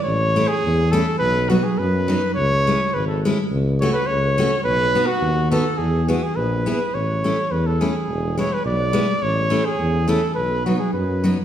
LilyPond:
<<
  \new Staff \with { instrumentName = "Trumpet" } { \time 2/4 \key a \lydian \tempo 4 = 105 cis''8. gis'8. a'8 | b'8 fis'16 gis'16 b'4 | cis''4 b'16 a'16 r8 | r8 cis''16 b'16 cis''4 |
b'8. fis'8. a'8 | gis'8 fis'16 gis'16 b'4 | cis''4 b'16 a'16 gis'8~ | gis'8 cis''16 b'16 d''4 |
cis''8. gis'8. a'8 | b'8 fis'16 gis'16 b'4 | }
  \new Staff \with { instrumentName = "Steel-string acoustic guitar" } { \time 2/4 \key a \lydian r8 <a cis' e'>8 r8 <a cis' e'>8 | r8 <fis b dis'>8 r8 <fis b dis'>8 | r8 <gis cis' e'>8 r8 <gis cis' e'>8 | r8 <a cis' fis'>8 r8 <a cis' fis'>8 |
r8 <b dis' fis'>8 r8 <b dis' fis'>8 | r8 <b e' gis'>8 r8 <b e' gis'>8 | r8 <a cis' e'>8 r8 <a cis' e'>8 | r8 <gis b e'>8 r8 <gis b e'>8 |
r8 <a cis' e'>8 r8 <a cis' e'>8 | r8 <fis b dis'>8 r8 <fis b dis'>8 | }
  \new Staff \with { instrumentName = "Tuba" } { \clef bass \time 2/4 \key a \lydian a,,4 e,4 | b,,4 fis,4 | cis,4 gis,,4 | cis,4 cis,4 |
b,,4 dis,4 | e,4 ais,,4 | a,,4 e,4 | e,,4 b,,4 |
a,,4 e,4 | b,,4 fis,4 | }
>>